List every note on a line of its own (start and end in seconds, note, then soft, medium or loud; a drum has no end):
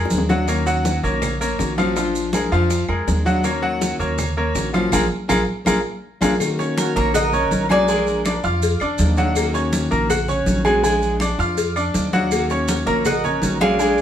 0.00 0.10 F2 medium
0.00 0.23 G#3 medium
0.00 0.23 G#4 medium
0.00 0.24 A#4 medium
0.05 high bongo medium
0.10 0.98 D#2 medium
0.10 0.29 F3 medium
0.10 0.29 G#3 medium
0.10 0.28 D4 soft
0.10 0.28 F4 medium
0.10 high conga medium
0.10 maracas medium
0.18 low bongo medium
0.29 0.45 F#3 medium
0.29 0.48 G#3 medium
0.29 0.47 D4 medium
0.29 0.47 F4 medium
0.29 0.45 F#4 medium
0.29 0.45 F#5 medium
0.29 low bongo loud
0.29 high conga medium
0.29 maracas soft
0.48 1.20 D#3 medium
0.48 0.63 A#3 medium
0.48 1.21 A#3 medium
0.48 1.21 C#4 medium
0.48 1.21 F#4 medium
0.48 0.64 A#4 medium
0.48 0.64 C#5 medium
0.48 high bongo medium
0.48 claves medium
0.48 maracas medium
0.66 0.97 F#3 medium
0.66 0.97 F#4 medium
0.66 0.97 F#5 medium
0.66 high conga soft
0.66 maracas medium
0.85 high bongo medium
0.85 high conga medium
0.85 maracas medium
1.03 1.55 A#1 medium
1.03 1.34 A#3 medium
1.03 1.34 A#4 medium
1.03 1.34 C#5 medium
1.03 high conga soft
1.03 maracas soft
1.22 muted steel-string acoustic guitar stroke medium
1.22 high bongo medium
1.22 high conga soft
1.22 low conga medium
1.22 claves medium
1.22 maracas medium
1.41 1.71 A#3 medium
1.41 1.71 A#4 medium
1.41 1.71 C#5 medium
1.41 high conga soft
1.41 maracas medium
1.59 2.46 A#1 medium
1.59 1.77 D#3 soft
1.59 1.77 A#3 soft
1.59 1.77 C#4 medium
1.59 1.76 F#4 medium
1.59 high bongo medium
1.59 low bongo medium
1.59 high conga soft
1.59 maracas medium
1.78 1.93 F3 medium
1.78 1.96 A#3 medium
1.78 1.96 C#4 medium
1.78 1.93 F4 medium
1.78 1.95 F#4 medium
1.78 1.93 F5 medium
1.78 high conga medium
1.78 claves medium
1.78 maracas soft
1.96 2.69 F3 medium
1.96 2.27 F3 medium
1.96 2.69 G#3 medium
1.96 2.69 D4 medium
1.96 2.27 F4 medium
1.96 2.69 F4 medium
1.96 2.27 F5 medium
1.96 high bongo medium
1.96 high conga soft
1.96 maracas medium
2.15 high bongo soft
2.15 high conga soft
2.15 maracas medium
2.33 2.49 G#3 medium
2.33 2.49 G#4 medium
2.33 2.49 A#4 medium
2.33 high bongo medium
2.33 high conga loud
2.33 claves medium
2.33 maracas medium
2.52 2.86 F2 medium
2.52 2.82 F3 medium
2.52 2.82 F4 medium
2.52 2.82 F5 medium
2.52 high conga soft
2.52 maracas soft
2.70 muted steel-string acoustic guitar stroke medium
2.70 high bongo medium
2.70 high conga soft
2.70 maracas medium
2.88 3.06 F2 medium
2.88 3.19 G#3 medium
2.88 3.19 G#4 medium
2.88 3.19 A#4 medium
2.88 high bongo soft
2.88 high conga soft
2.88 claves medium
3.08 3.94 D#2 medium
3.08 3.25 F3 soft
3.08 3.25 G#3 soft
3.08 3.25 D4 medium
3.08 3.24 F4 medium
3.08 high bongo medium
3.08 low bongo medium
3.08 high conga medium
3.08 maracas medium
3.25 3.41 F#3 medium
3.25 3.44 G#3 medium
3.25 3.44 D4 medium
3.25 3.43 F4 medium
3.25 3.41 F#4 medium
3.25 3.41 F#5 medium
3.25 high bongo soft
3.25 high conga medium
3.25 maracas soft
3.44 4.17 D#3 medium
3.44 3.59 A#3 medium
3.44 4.18 A#3 medium
3.44 4.18 C#4 medium
3.44 4.18 F#4 medium
3.44 3.60 A#4 medium
3.44 3.60 C#5 medium
3.44 high bongo medium
3.44 high conga soft
3.44 claves medium
3.44 maracas medium
3.62 3.93 F#3 medium
3.62 3.93 F#4 medium
3.62 3.93 F#5 medium
3.62 high conga soft
3.81 high bongo medium
3.81 high conga medium
3.81 maracas medium
3.99 4.51 D#2 medium
3.99 4.30 A#3 medium
3.99 4.30 A#4 medium
3.99 4.30 C#5 medium
3.99 high conga soft
3.99 maracas soft
4.18 muted steel-string acoustic guitar stroke medium
4.18 high bongo medium
4.18 high conga soft
4.18 low conga medium
4.18 claves medium
4.18 maracas medium
4.37 4.67 A#3 medium
4.37 4.67 A#4 medium
4.37 4.68 C#5 medium
4.37 high conga soft
4.55 4.90 A#1 medium
4.55 4.73 D#3 soft
4.55 4.73 A#3 medium
4.55 4.72 C#4 medium
4.55 4.72 F#4 medium
4.55 high bongo medium
4.55 low bongo medium
4.55 high conga soft
4.55 maracas medium
4.73 4.89 F3 medium
4.73 4.90 A#3 medium
4.73 4.91 C#4 medium
4.73 4.89 F4 medium
4.73 4.91 F#4 medium
4.73 4.89 F5 medium
4.73 high conga medium
4.73 claves medium
4.73 maracas soft
4.91 5.06 A#1 loud
4.91 5.04 A#3 loud
4.91 5.04 D4 medium
4.91 5.04 F4 medium
4.91 5.05 F4 loud
4.91 5.05 G#4 medium
4.91 5.05 A#4 medium
4.91 low bongo medium
4.91 high conga loud
4.91 claves medium
4.91 maracas loud
5.28 5.43 A#1 medium
5.28 5.41 A#3 medium
5.28 5.41 D4 medium
5.28 5.41 F4 loud
5.28 5.41 F4 medium
5.28 5.41 G#4 loud
5.28 5.41 A#4 loud
5.28 low bongo loud
5.28 high conga medium
5.28 claves loud
5.28 maracas loud
5.65 5.80 A#1 medium
5.65 5.77 A#3 loud
5.65 5.78 D4 medium
5.65 5.78 F4 loud
5.65 5.78 F4 medium
5.65 5.78 G#4 medium
5.65 5.78 A#4 loud
5.65 low bongo medium
5.65 high conga loud
5.65 claves loud
5.65 maracas loud
6.21 6.35 A#1 medium
6.21 6.33 A#3 medium
6.21 6.33 D4 loud
6.21 6.33 F4 loud
6.21 6.34 F4 medium
6.21 6.34 G#4 medium
6.21 6.34 A#4 medium
6.21 low bongo loud
6.21 high conga loud
6.21 claves medium
6.21 maracas loud
6.39 7.13 D#3 medium
6.39 7.14 A#3 medium
6.39 7.14 C#4 medium
6.39 7.14 F#4 medium
6.39 cowbell medium
6.39 high conga soft
6.39 claves medium
6.39 maracas medium
6.59 6.89 C#4 medium
6.59 6.89 C#5 medium
6.59 6.89 C#6 medium
6.59 cowbell medium
6.59 high conga soft
6.59 maracas soft
6.77 6.95 F#4 medium
6.77 6.97 A#4 medium
6.77 cowbell medium
6.77 high conga loud
6.77 maracas medium
6.96 7.48 A#1 medium
6.96 7.11 A#3 medium
6.96 7.11 A#4 medium
6.96 7.13 A#4 medium
6.96 7.13 C#5 loud
6.96 7.11 A#5 medium
6.96 high conga soft
6.96 maracas soft
7.14 7.29 F#4 medium
7.14 7.66 A#4 loud
7.14 7.71 D#5 loud
7.14 7.29 F#5 medium
7.14 7.30 F#6 medium
7.14 muted steel-string acoustic guitar stroke medium
7.14 cowbell loud
7.14 high conga soft
7.14 low conga medium
7.14 claves medium
7.14 maracas medium
7.33 7.63 C#4 medium
7.33 7.63 C#5 medium
7.33 7.64 C#6 medium
7.33 high conga soft
7.33 low conga medium
7.33 maracas soft
7.51 8.38 A#1 medium
7.51 7.69 D#3 soft
7.51 7.69 A#3 medium
7.51 7.69 C#4 medium
7.51 7.69 F#4 medium
7.51 cowbell medium
7.51 high conga medium
7.51 maracas medium
7.69 7.85 G#3 medium
7.69 7.89 A#3 medium
7.69 7.88 C#4 medium
7.69 7.88 F#4 medium
7.69 7.85 G#4 medium
7.69 8.40 A#4 medium
7.69 8.40 D5 medium
7.69 7.86 G#5 medium
7.69 cowbell medium
7.69 high conga loud
7.69 claves medium
7.69 maracas soft
7.88 8.61 F3 medium
7.88 8.19 G#3 medium
7.88 8.62 G#3 medium
7.88 8.62 D4 medium
7.88 8.62 F4 medium
7.88 8.19 G#4 medium
7.88 8.19 G#5 medium
7.88 cowbell medium
7.88 high conga soft
7.88 maracas medium
8.07 high conga soft
8.07 maracas soft
8.25 8.41 D4 medium
8.25 8.41 D5 medium
8.25 8.41 D6 medium
8.25 cowbell medium
8.25 high conga loud
8.25 claves medium
8.25 maracas medium
8.44 8.78 F2 medium
8.44 8.74 F4 medium
8.44 8.74 F5 medium
8.44 8.74 F6 medium
8.44 high conga soft
8.44 maracas soft
8.62 muted steel-string acoustic guitar stroke medium
8.62 cowbell loud
8.62 high conga soft
8.62 maracas medium
8.80 8.98 F2 medium
8.80 9.11 D4 medium
8.80 9.11 D5 medium
8.80 9.12 D6 medium
8.80 high conga soft
8.80 claves medium
8.80 maracas soft
8.98 9.86 D#2 loud
8.98 9.17 F3 medium
8.98 9.17 G#3 medium
8.98 9.17 D4 medium
8.98 9.17 F4 medium
8.98 cowbell medium
8.98 high conga medium
8.98 maracas medium
9.17 9.48 F#3 medium
9.17 9.36 G#3 medium
9.17 9.36 D4 medium
9.17 9.35 F4 medium
9.17 9.48 F#4 medium
9.17 9.48 F#5 medium
9.17 cowbell medium
9.17 high conga medium
9.17 maracas soft
9.36 10.09 D#3 medium
9.36 10.10 A#3 medium
9.36 10.09 C#4 medium
9.36 10.10 F#4 medium
9.36 cowbell loud
9.36 high conga soft
9.36 claves medium
9.36 maracas medium
9.54 9.85 C#4 medium
9.54 9.85 C#5 medium
9.54 9.85 C#6 medium
9.54 cowbell medium
9.54 high conga soft
9.54 maracas soft
9.73 cowbell medium
9.73 high conga loud
9.73 maracas medium
9.91 10.43 A#1 medium
9.91 10.06 A#3 medium
9.91 10.06 A#4 medium
9.91 10.07 A#5 medium
9.91 high conga soft
9.91 maracas soft
10.10 10.25 F#4 medium
10.10 10.25 F#5 medium
10.10 10.25 F#6 medium
10.10 muted steel-string acoustic guitar stroke medium
10.10 cowbell loud
10.10 high conga soft
10.10 low conga medium
10.10 claves medium
10.10 maracas medium
10.28 10.59 C#4 medium
10.28 10.59 C#5 medium
10.28 10.59 C#6 medium
10.28 high conga soft
10.28 low conga medium
10.28 maracas soft
10.46 11.33 A#1 medium
10.46 10.65 D#3 soft
10.46 10.65 A#3 medium
10.46 10.65 C#4 medium
10.46 10.65 F#4 medium
10.46 cowbell medium
10.46 high conga medium
10.46 maracas medium
10.65 10.80 G#3 medium
10.65 10.84 A#3 medium
10.65 10.84 C#4 medium
10.65 10.84 F#4 medium
10.65 10.80 G#4 medium
10.65 10.80 G#5 medium
10.65 cowbell medium
10.65 high conga medium
10.65 claves medium
10.65 maracas soft
10.83 11.57 F3 medium
10.83 11.14 G#3 medium
10.83 11.58 G#3 medium
10.83 11.57 D4 medium
10.83 11.58 F4 medium
10.83 11.14 G#4 medium
10.83 11.14 G#5 medium
10.83 cowbell medium
10.83 high conga soft
10.83 maracas medium
11.02 high conga soft
11.02 maracas soft
11.20 11.36 D4 medium
11.20 11.36 D5 medium
11.20 11.36 D6 medium
11.20 cowbell medium
11.20 high conga medium
11.20 claves medium
11.20 maracas medium
11.38 11.91 F2 loud
11.38 11.70 F4 medium
11.38 11.70 F5 medium
11.38 11.70 F6 medium
11.38 high conga soft
11.38 maracas soft
11.57 muted steel-string acoustic guitar stroke medium
11.57 cowbell loud
11.57 high conga soft
11.57 maracas medium
11.76 12.06 D4 medium
11.76 12.07 D5 medium
11.76 12.07 D6 medium
11.76 high conga soft
11.76 claves medium
11.76 maracas soft
11.94 12.81 D#2 medium
11.94 12.13 F3 soft
11.94 12.13 G#3 medium
11.94 12.13 D4 soft
11.94 12.12 F4 medium
11.94 cowbell medium
11.94 high conga medium
11.94 maracas medium
12.13 12.43 F#3 medium
12.13 12.32 G#3 medium
12.13 12.32 D4 medium
12.13 12.31 F4 medium
12.13 12.44 F#4 medium
12.13 12.44 F#5 medium
12.13 cowbell medium
12.13 high conga medium
12.13 maracas soft
12.31 13.04 D#3 medium
12.31 13.05 A#3 medium
12.31 13.04 C#4 medium
12.31 13.05 F#4 medium
12.31 cowbell loud
12.31 high conga soft
12.31 claves medium
12.31 maracas medium
12.50 12.81 C#4 medium
12.50 12.81 C#5 medium
12.50 12.81 C#6 medium
12.50 cowbell medium
12.50 high conga soft
12.50 maracas soft
12.68 12.74 F#4 medium
12.68 12.74 A#4 medium
12.68 cowbell medium
12.68 high conga medium
12.68 maracas medium
12.86 13.39 A#1 medium
12.86 13.02 A#3 medium
12.86 13.04 A#4 medium
12.86 13.02 A#4 medium
12.86 13.04 C#5 medium
12.86 13.02 A#5 medium
12.86 high conga soft
12.86 maracas soft
13.05 13.21 F#4 medium
13.05 13.57 A#4 medium
13.05 13.58 D#5 loud
13.05 13.21 F#5 medium
13.05 13.21 F#6 medium
13.05 muted steel-string acoustic guitar stroke medium
13.05 cowbell loud
13.05 high conga soft
13.05 low conga medium
13.05 claves medium
13.05 maracas medium
13.24 13.55 C#4 medium
13.24 13.55 C#5 medium
13.24 13.55 C#6 medium
13.24 high conga soft
13.24 low conga medium
13.24 maracas soft
13.42 14.02 A#1 medium
13.42 13.60 D#3 medium
13.42 13.60 A#3 medium
13.42 13.60 C#4 medium
13.42 13.59 F#4 medium
13.42 cowbell medium
13.42 high conga medium
13.42 maracas medium
13.60 13.76 G#3 medium
13.60 13.79 A#3 medium
13.60 13.79 C#4 medium
13.60 13.78 F#4 medium
13.60 13.76 G#4 medium
13.60 14.02 D5 medium
13.60 14.02 F5 loud
13.60 13.77 G#5 medium
13.60 cowbell medium
13.60 high conga medium
13.60 claves medium
13.60 maracas soft
13.78 14.02 F3 medium
13.78 14.02 G#3 medium
13.78 14.02 D4 medium
13.78 14.02 F4 medium
13.78 14.02 G#4 medium
13.78 14.02 G#5 medium
13.78 cowbell loud
13.78 high conga soft
13.78 maracas medium
13.98 high conga soft
13.98 maracas soft